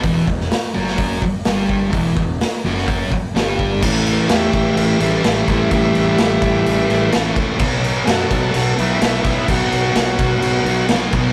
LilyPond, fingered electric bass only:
\new Staff \with { instrumentName = "Fingered electric bass" } { \clef bass \time 4/4 \key a \dorian \tempo 4 = 127 e,,8 e,,8 r8 fis,,4 r8 g,,4 | e,,8 e,,8 r8 fis,,4 r8 g,,4 | a,,4 e,8 a,,8 a,,8 a,,8 a,,8 a,,8 | a,,8 a,,8 a,,8 a,,8 a,,8 a,,8 a,,8 c,8 |
b,,4 fis,8 b,,8 b,,8 b,,8 b,,8 b,,8 | b,,8 b,,8 b,,8 b,,8 b,,8 b,,8 b,,8 b,,8 | }